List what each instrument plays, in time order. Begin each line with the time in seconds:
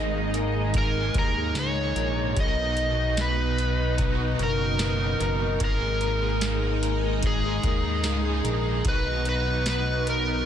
Already playing: analog synth bass G#1, clean electric guitar G#2 D#4 G#4 A#4, string machine G#3 D#4, overdriven electric guitar A#3 D#4 G#4, electric slide guitar D#5
0.14 clean electric guitar G#4
0.34 clean electric guitar A#4, closed hi-hat
0.55 clean electric guitar G#4
0.73 clean electric guitar G#2, overdriven electric guitar G#3 A#3 D#4, kick, closed hi-hat
0.78 overdriven electric guitar G#4, electric slide guitar A#4
0.95 clean electric guitar G#4
1.14 analog synth bass D#2, clean electric guitar A#4, kick, closed hi-hat
1.19 electric slide guitar A#4
1.36 clean electric guitar G#4
1.54 analog synth bass C#2, overdriven electric guitar G#3 A#3 D#4, clean electric guitar D#4, snare, closed hi-hat, tambourine
1.59 overdriven electric guitar G#4, electric slide guitar C#5
1.76 clean electric guitar G#4
1.96 analog synth bass A#1, clean electric guitar A#4, closed hi-hat
2.16 clean electric guitar G#4
2.34 analog synth bass B1, overdriven electric guitar B2 F#3, clean electric guitar B2, string machine B2, kick, closed hi-hat
2.40 overdriven electric guitar D#4 F#4, electric slide guitar D#5
2.56 clean electric guitar D#4
2.77 closed hi-hat
2.98 clean electric guitar D#4
3.17 clean electric guitar B3, electric slide guitar B4, snare, closed hi-hat, tambourine
3.38 clean electric guitar D#4
3.58 closed hi-hat
3.78 clean electric guitar D#4
3.97 clean electric guitar B2, overdriven electric guitar F#3 D#4, kick, closed hi-hat
4.02 overdriven electric guitar F#4
4.18 clean electric guitar D#4
4.39 analog synth bass F#1, clean electric guitar A#4, closed hi-hat
4.43 electric slide guitar A#4
4.59 clean electric guitar D#4
4.79 overdriven electric guitar F#3 A#3 D#4, clean electric guitar B3, snare, closed hi-hat, tambourine
4.84 overdriven electric guitar F#4
5.00 clean electric guitar D#4
5.20 analog synth bass F#1, clean electric guitar A#4, closed hi-hat
5.40 clean electric guitar D#4
5.58 analog synth bass G#1, clean electric guitar G#2, overdriven electric guitar G#3 A#3, string machine G#3 D#4, kick, closed hi-hat
5.63 overdriven electric guitar D#4 G#4, electric slide guitar A#4
5.81 clean electric guitar G#4
6.01 clean electric guitar A#4, closed hi-hat
6.21 clean electric guitar G#4
6.41 clean electric guitar D#4, snare, closed hi-hat, tambourine
6.62 clean electric guitar G#4
6.82 clean electric guitar A#4, closed hi-hat
7.02 clean electric guitar G#4
7.22 clean electric guitar G#2, overdriven electric guitar G#3 A#3 D#4, kick, closed hi-hat
7.27 electric slide guitar G#4, overdriven electric guitar G#4
7.43 clean electric guitar G#4
7.63 analog synth bass D#2, clean electric guitar A#4, kick, closed hi-hat
7.84 clean electric guitar G#4
8.03 analog synth bass C#2, overdriven electric guitar G#3 A#3 D#4, clean electric guitar D#4, snare, closed hi-hat, tambourine
8.07 overdriven electric guitar G#4
8.24 clean electric guitar G#4
8.44 analog synth bass A#1, clean electric guitar A#4, closed hi-hat
8.64 clean electric guitar G#4
8.84 analog synth bass B1, overdriven electric guitar B2 F#3 D#4 F#4, clean electric guitar B2, string machine B3, kick, closed hi-hat
8.88 electric slide guitar B4
9.06 clean electric guitar D#4
9.24 overdriven electric guitar D#4 F#4, closed hi-hat
9.29 electric slide guitar B4
9.46 clean electric guitar D#4
9.66 clean electric guitar B3, electric slide guitar B4, snare, closed hi-hat, tambourine
9.86 clean electric guitar D#4
10.07 clean electric guitar A#4, electric slide guitar A#4, closed hi-hat
10.27 clean electric guitar D#4